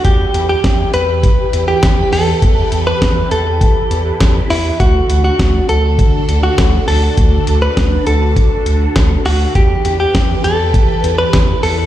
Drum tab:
HH |xxxxxxxo|xxxxxxxo|xxxxxxxo|xxxxxxxo|
SD |--o---o-|--o---o-|--o---o-|--o---o-|
BD |o-o-o-o-|o-o-o-o-|o-o-o-o-|o-o-o-o-|

HH |xxxxxxxo|
SD |--o---o-|
BD |o-o-o-o-|